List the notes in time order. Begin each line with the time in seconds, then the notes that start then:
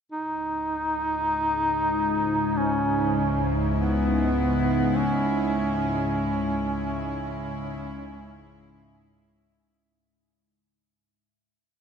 0.11 C#2 G#2 C#3 D#4
1.09 G#3
2.57 C#4
2.79 E4
3.79 B3
4.97 C#4